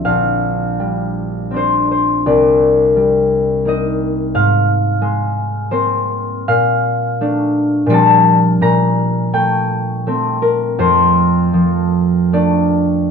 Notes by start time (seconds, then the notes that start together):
Already playing: F3 C4 C5 D5
0.05 A#1 F5
0.79 G3
1.51 C4 D4
1.56 C5
1.91 C5
2.26 C2 D5
2.96 G3
3.65 A#3 D#4 D#5
4.34 G#2 F5
5.02 G#3
5.71 A#3 C4 C5
6.48 A#2 F5
7.21 A3 D4
7.86 A#2 F3 G3
7.91 C4 A5
8.61 A#2 A#5
9.33 A3 G5
10.07 A3 C4
10.42 A#4
10.79 F2 C5
11.53 F3
12.33 A3 D4 D5